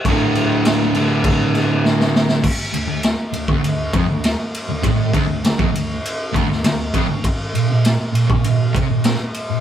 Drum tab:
CC |x-x-x-x-x-x-----|x---------------|----------------|----------------|
RD |----------------|--x-x-x-x-x-x-x-|x-x-x-x-x-x-x-x-|x-x-x-x-x-x-x-x-|
SD |----o-----o-oooo|----o-------o---|----o------oo---|----o-------o---|
BD |o-------o-------|o------o--o-----|o-o--o----o---o-|o------o--o-----|